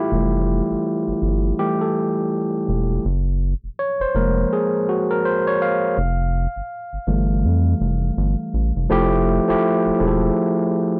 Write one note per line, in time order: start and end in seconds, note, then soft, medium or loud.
0.00 0.12 E3 soft
0.00 0.12 G3 soft
0.00 0.13 A3 soft
0.00 3.06 E4 medium
0.00 3.05 F4 medium
0.00 1.59 G4 medium
0.12 0.61 F1 loud
0.12 0.63 E3 medium
0.12 0.63 G3 soft
0.12 0.64 A3 medium
0.71 0.76 G1 soft
1.08 1.13 G1 soft
1.22 1.53 G1 medium
1.59 1.91 E3 medium
1.59 1.91 G3 soft
1.59 1.91 A3 medium
1.59 1.81 G4 medium
1.81 2.86 A4 medium
2.68 2.99 E1 medium
3.05 3.54 F#1 loud
3.64 3.69 F1 soft
3.79 3.99 C#5 medium
4.00 4.05 F1 soft
4.00 4.15 C5 medium
4.15 4.45 F1 medium
4.15 5.20 F3 medium
4.15 5.20 G#3 soft
4.15 5.20 A#3 medium
4.15 4.32 A#4 medium
4.53 4.89 G#4 medium
4.89 5.10 F#4 medium
5.11 5.25 A#4 medium
5.25 5.47 C5 medium
5.47 5.61 C#5 medium
5.62 7.40 F5 medium
5.98 6.47 F1 loud
6.56 6.62 G1 soft
6.93 6.98 G1 soft
7.07 7.46 G1 medium
7.07 7.58 E3 medium
7.07 7.58 G3 soft
7.07 7.59 A3 medium
7.44 7.75 F2 medium
7.81 8.11 F1 medium
8.17 8.35 G1 loud
8.54 8.72 A1 medium
8.76 8.88 F1 medium
8.90 9.40 F1 loud
8.90 9.34 F3 loud
8.90 9.34 A3 loud
8.90 9.34 E4 medium
8.90 9.35 G4 loud
9.48 9.55 E1 soft
9.48 9.90 F3 medium
9.48 9.90 A3 medium
9.48 9.90 E4 medium
9.48 9.91 G4 medium
9.86 9.91 E1 soft
9.99 10.31 E1 medium
9.99 11.00 F3 medium
9.99 11.00 A3 medium
9.99 11.00 E4 medium
9.99 10.08 G#4 medium
10.07 11.00 A4 medium